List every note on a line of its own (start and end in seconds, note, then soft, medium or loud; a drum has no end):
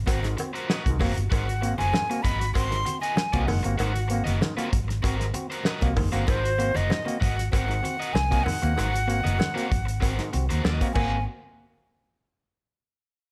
0.06 0.34 G#1 medium
0.06 0.20 C4 medium
0.06 0.26 F#4 medium
0.06 0.20 F#4 medium
0.06 0.27 A#4 medium
0.06 0.27 C5 medium
0.06 kick loud
0.06 closed hi-hat loud
0.06 cowbell medium
0.06 muted conga soft
0.23 0.35 G#2 medium
0.23 0.35 D#3 medium
0.23 snare soft
0.23 closed hi-hat soft
0.23 muted conga soft
0.37 0.51 C4 medium
0.37 0.51 F#4 medium
0.37 muted overdriven electric guitar stroke soft
0.37 closed hi-hat medium
0.37 cowbell medium
0.37 high conga soft
0.53 0.67 F#4 soft
0.53 0.68 A#4 medium
0.53 0.68 C5 medium
0.53 closed hi-hat soft
0.68 0.76 C4 soft
0.68 0.88 F#4 medium
0.68 0.77 F#4 soft
0.68 0.84 A#4 medium
0.68 0.84 D#5 medium
0.68 snare medium
0.68 cowbell medium
0.85 0.99 C2 medium
0.85 0.98 G#2 medium
0.85 0.98 D#3 medium
0.85 muted overdriven electric guitar stroke soft
0.85 kick medium
0.85 closed hi-hat medium
1.00 1.15 F#1 loud
1.00 1.13 A#3 medium
1.00 1.13 C4 medium
1.00 1.15 F#4 medium
1.00 1.13 F#4 medium
1.00 1.15 A#4 medium
1.00 1.15 C5 medium
1.00 kick medium
1.00 open hi-hat medium
1.00 cowbell medium
1.00 high conga medium
1.00 low conga medium
1.16 1.30 G1 medium
1.16 muted overdriven electric guitar stroke soft
1.16 closed hi-hat medium
1.30 1.73 G#1 loud
1.30 1.44 G#2 medium
1.30 1.44 D#3 medium
1.30 1.50 F#4 medium
1.30 1.47 A#4 medium
1.30 1.46 C5 medium
1.30 1.76 F#5 medium
1.30 kick loud
1.30 closed hi-hat medium
1.30 cowbell medium
1.30 muted conga soft
1.48 muted overdriven electric guitar stroke soft
1.48 closed hi-hat medium
1.48 muted conga soft
1.61 1.75 A#3 medium
1.61 1.75 C4 medium
1.61 1.75 F#4 medium
1.61 muted overdriven electric guitar stroke soft
1.61 closed hi-hat medium
1.78 1.92 F#1 medium
1.78 1.85 C4 soft
1.78 1.93 F#4 soft
1.78 1.85 F#4 soft
1.78 1.93 A#4 medium
1.78 1.92 C5 medium
1.78 2.24 G#5 loud
1.78 closed hi-hat soft
1.78 high conga medium
1.93 2.07 G#2 medium
1.93 2.06 D#3 medium
1.93 snare loud
1.93 cowbell medium
1.93 muted conga soft
1.93 high conga medium
2.10 2.21 A#3 medium
2.10 2.21 C4 medium
2.10 2.21 F#4 medium
2.10 muted overdriven electric guitar stroke medium
2.10 closed hi-hat medium
2.22 2.52 G#1 medium
2.22 2.32 C4 soft
2.22 2.44 F#4 medium
2.22 2.32 F#4 medium
2.22 2.40 A#4 medium
2.22 2.40 D#5 medium
2.22 2.54 B5 loud
2.22 kick loud
2.22 closed hi-hat medium
2.22 low conga medium
2.40 muted overdriven electric guitar stroke soft
2.40 snare soft
2.40 closed hi-hat medium
2.54 2.83 G#1 medium
2.54 2.68 C4 medium
2.54 2.74 F#4 medium
2.54 2.69 F#4 medium
2.54 2.75 A#4 loud
2.54 2.75 C5 loud
2.54 2.99 C6 loud
2.54 kick medium
2.54 closed hi-hat loud
2.54 cowbell medium
2.54 muted conga soft
2.71 2.83 G#2 medium
2.71 2.83 D#3 medium
2.71 closed hi-hat soft
2.71 muted conga soft
2.85 2.99 C4 medium
2.85 2.99 F#4 medium
2.85 muted overdriven electric guitar stroke soft
2.85 closed hi-hat medium
2.85 high conga medium
3.01 3.15 F#4 medium
3.01 3.16 A#4 medium
3.01 3.16 D#5 medium
3.01 3.48 G#5 medium
3.01 closed hi-hat medium
3.16 muted overdriven electric guitar stroke soft
3.16 snare loud
3.16 cowbell medium
3.16 muted conga soft
3.33 3.46 C2 medium
3.33 3.45 A#3 medium
3.33 3.45 C4 medium
3.33 3.46 F#4 medium
3.33 3.45 F#4 medium
3.33 3.46 A#4 medium
3.33 3.48 D#5 medium
3.33 kick loud
3.33 closed hi-hat medium
3.33 muted conga soft
3.46 3.63 F#1 loud
3.46 3.61 G#2 medium
3.46 3.61 D#3 medium
3.46 3.76 F#5 medium
3.46 muted overdriven electric guitar stroke soft
3.46 open hi-hat medium
3.46 cowbell medium
3.46 high conga medium
3.46 low conga medium
3.63 3.78 G1 medium
3.63 3.76 A#3 medium
3.63 3.76 C4 medium
3.63 3.77 F#4 medium
3.63 muted overdriven electric guitar stroke medium
3.63 closed hi-hat medium
3.77 4.21 G#1 loud
3.77 3.92 G#2 medium
3.77 3.92 D#3 medium
3.77 3.98 F#4 loud
3.77 3.93 A#4 loud
3.77 3.93 C5 loud
3.77 4.36 F#5 medium
3.77 closed hi-hat medium
3.77 cowbell medium
3.94 muted overdriven electric guitar stroke medium
3.94 closed hi-hat soft
3.94 muted conga soft
4.08 4.23 A#3 medium
4.08 4.23 C4 medium
4.08 4.23 F#4 medium
4.08 muted overdriven electric guitar stroke soft
4.08 closed hi-hat medium
4.24 4.40 F#1 medium
4.24 4.33 C4 soft
4.24 4.39 F#4 soft
4.24 4.40 A#4 medium
4.24 4.40 D#5 medium
4.24 closed hi-hat soft
4.24 high conga medium
4.40 4.54 G#2 medium
4.40 4.54 D#3 medium
4.40 muted overdriven electric guitar stroke soft
4.40 snare loud
4.40 cowbell medium
4.40 muted conga soft
4.40 high conga medium
4.57 4.69 A#3 medium
4.57 4.69 C4 medium
4.57 4.69 F#4 medium
4.57 4.70 F#4 medium
4.57 4.71 A#4 medium
4.57 4.71 C5 loud
4.57 closed hi-hat medium
4.57 muted conga soft
4.71 5.00 G#1 medium
4.71 4.79 C4 soft
4.71 4.79 F#4 medium
4.71 muted overdriven electric guitar stroke soft
4.71 kick loud
4.71 closed hi-hat loud
4.71 low conga medium
4.88 muted overdriven electric guitar stroke soft
4.88 snare soft
4.88 closed hi-hat medium
5.02 5.31 G#1 medium
5.02 5.16 C4 medium
5.02 5.23 F#4 loud
5.02 5.16 F#4 medium
5.02 5.23 A#4 loud
5.02 5.23 C5 medium
5.02 kick medium
5.02 closed hi-hat medium
5.02 cowbell medium
5.02 muted conga soft
5.19 5.31 G#2 medium
5.19 5.31 D#3 medium
5.19 snare soft
5.19 closed hi-hat soft
5.33 5.47 C4 medium
5.33 5.47 F#4 medium
5.33 muted overdriven electric guitar stroke soft
5.33 closed hi-hat medium
5.33 high conga soft
5.50 5.64 F#4 medium
5.50 5.65 A#4 medium
5.50 5.65 C5 medium
5.50 closed hi-hat medium
5.64 5.85 F#4 loud
5.64 5.86 A#4 loud
5.64 5.86 D#5 loud
5.64 snare loud
5.64 cowbell medium
5.64 muted conga soft
5.81 5.95 C2 medium
5.81 5.93 A#3 medium
5.81 5.93 C4 medium
5.81 5.94 F#4 medium
5.81 kick medium
5.81 closed hi-hat medium
5.81 muted conga soft
5.96 6.11 F#1 loud
5.96 6.10 G#2 medium
5.96 6.09 D#3 medium
5.96 muted overdriven electric guitar stroke medium
5.96 kick loud
5.96 open hi-hat medium
5.96 cowbell medium
5.96 high conga medium
5.96 low conga medium
6.12 6.26 G1 medium
6.12 6.24 A#3 medium
6.12 6.24 C4 medium
6.12 6.24 F#4 medium
6.12 6.26 F#4 medium
6.12 6.27 A#4 medium
6.12 6.27 C5 medium
6.12 closed hi-hat medium
6.27 6.69 G#1 loud
6.27 6.40 G#2 medium
6.27 6.40 D#3 medium
6.27 6.48 F#4 medium
6.27 6.44 A#4 loud
6.27 6.77 C5 loud
6.27 6.43 C5 medium
6.27 kick loud
6.27 closed hi-hat medium
6.27 cowbell medium
6.27 muted conga soft
6.44 muted overdriven electric guitar stroke soft
6.44 closed hi-hat medium
6.58 6.71 A#3 medium
6.58 6.72 C4 medium
6.58 6.72 F#4 loud
6.58 muted overdriven electric guitar stroke soft
6.58 closed hi-hat medium
6.74 6.89 F#1 medium
6.74 6.90 F#4 medium
6.74 6.90 A#4 medium
6.74 6.89 C5 medium
6.74 7.21 D#5 loud
6.74 closed hi-hat soft
6.74 high conga medium
6.90 7.03 G#2 medium
6.90 7.03 D#3 medium
6.90 snare loud
6.90 cowbell medium
6.90 muted conga soft
6.90 high conga medium
7.05 7.18 A#3 medium
7.05 7.18 C4 medium
7.05 7.18 F#4 medium
7.05 muted overdriven electric guitar stroke medium
7.05 closed hi-hat medium
7.05 muted conga soft
7.20 7.49 G#1 medium
7.20 7.28 C4 soft
7.20 7.40 F#4 medium
7.20 7.28 F#4 medium
7.20 7.38 A#4 medium
7.20 7.37 D#5 loud
7.20 7.51 F#5 loud
7.20 kick loud
7.20 closed hi-hat medium
7.20 low conga medium
7.37 muted overdriven electric guitar stroke soft
7.37 snare soft
7.37 closed hi-hat medium
7.51 7.80 G#1 medium
7.51 7.65 C4 medium
7.51 7.72 F#4 medium
7.51 7.65 F#4 medium
7.51 7.73 A#4 medium
7.51 7.73 C5 medium
7.51 8.15 F#5 loud
7.51 kick loud
7.51 closed hi-hat loud
7.51 cowbell medium
7.51 muted conga soft
7.68 7.80 G#2 medium
7.68 7.80 D#3 medium
7.68 closed hi-hat soft
7.68 muted conga soft
7.83 7.96 C4 medium
7.83 7.96 F#4 medium
7.83 muted overdriven electric guitar stroke soft
7.83 closed hi-hat medium
7.83 high conga soft
8.00 8.13 F#4 medium
8.00 8.14 A#4 medium
8.00 8.14 D#5 medium
8.00 closed hi-hat soft
8.13 8.42 C2 loud
8.13 8.45 G#5 loud
8.13 muted overdriven electric guitar stroke soft
8.13 snare loud
8.13 cowbell medium
8.30 8.42 A#3 medium
8.30 8.42 C4 medium
8.30 8.42 F#4 medium
8.30 8.44 F#4 medium
8.30 8.45 A#4 medium
8.30 8.46 D#5 medium
8.30 kick loud
8.30 closed hi-hat medium
8.30 muted conga soft
8.44 8.58 G#2 medium
8.44 8.58 D#3 medium
8.44 10.63 F#5 loud
8.44 muted overdriven electric guitar stroke soft
8.44 cowbell medium
8.44 high conga medium
8.44 low conga medium
8.48 open hi-hat medium
8.62 8.76 D#2 medium
8.62 8.74 A#3 medium
8.62 8.74 C4 medium
8.62 8.74 F#4 medium
8.62 muted overdriven electric guitar stroke medium
8.62 closed hi-hat medium
8.76 9.19 G#1 loud
8.76 8.90 G#2 medium
8.76 8.90 D#3 medium
8.76 8.97 F#4 medium
8.76 8.93 A#4 loud
8.76 8.92 C5 medium
8.76 closed hi-hat medium
8.76 cowbell medium
8.76 muted conga soft
8.93 muted overdriven electric guitar stroke soft
8.93 closed hi-hat medium
8.93 muted conga soft
9.07 9.21 A#3 medium
9.07 9.21 C4 medium
9.07 9.21 F#4 loud
9.07 muted overdriven electric guitar stroke soft
9.07 closed hi-hat medium
9.24 9.38 F#1 medium
9.24 9.31 C4 soft
9.24 9.31 F#4 soft
9.24 9.37 F#4 soft
9.24 9.38 A#4 medium
9.24 9.38 D#5 medium
9.24 closed hi-hat medium
9.24 high conga medium
9.38 9.52 G#2 medium
9.38 9.52 D#3 medium
9.38 muted overdriven electric guitar stroke soft
9.38 snare loud
9.38 cowbell medium
9.38 high conga medium
9.54 9.67 A#3 medium
9.54 9.67 C4 medium
9.54 9.69 F#4 medium
9.54 9.67 F#4 medium
9.54 9.70 A#4 medium
9.54 9.70 C5 medium
9.54 closed hi-hat medium
9.70 9.99 G#1 medium
9.70 9.77 C4 soft
9.70 9.78 F#4 medium
9.70 muted overdriven electric guitar stroke soft
9.70 kick loud
9.70 closed hi-hat medium
9.70 low conga medium
9.85 muted overdriven electric guitar stroke medium
9.85 closed hi-hat medium
10.00 10.17 G#1 medium
10.00 10.14 C4 medium
10.00 10.21 F#4 medium
10.00 10.15 F#4 medium
10.00 10.21 A#4 loud
10.00 10.21 C5 loud
10.00 kick medium
10.00 closed hi-hat loud
10.00 cowbell medium
10.00 muted conga soft
10.19 10.30 G#2 medium
10.19 10.30 D#3 medium
10.19 snare soft
10.19 closed hi-hat soft
10.19 muted conga soft
10.33 10.48 C2 medium
10.33 10.46 C4 medium
10.33 10.46 F#4 medium
10.33 muted overdriven electric guitar stroke soft
10.33 closed hi-hat medium
10.33 high conga medium
10.49 10.63 D#2 medium
10.49 10.63 F#4 medium
10.49 10.64 A#4 medium
10.49 10.63 C5 medium
10.49 closed hi-hat soft
10.64 10.79 D#2 medium
10.64 10.85 F#4 medium
10.64 10.85 A#4 medium
10.64 10.86 D#5 loud
10.64 snare loud
10.64 cowbell medium
10.64 muted conga soft
10.81 10.92 A#3 medium
10.81 10.92 C4 medium
10.81 10.92 F#4 medium
10.81 kick medium
10.81 closed hi-hat medium
10.81 muted conga soft
10.93 11.25 G#1 loud
10.93 11.19 A#3 medium
10.93 11.19 C4 medium
10.93 11.15 F#4 medium
10.93 11.19 F#4 loud
10.93 11.15 A#4 medium
10.93 11.16 C5 medium
10.93 11.23 G#5 medium
10.93 kick loud
10.93 crash medium
10.93 cowbell medium
10.93 high conga medium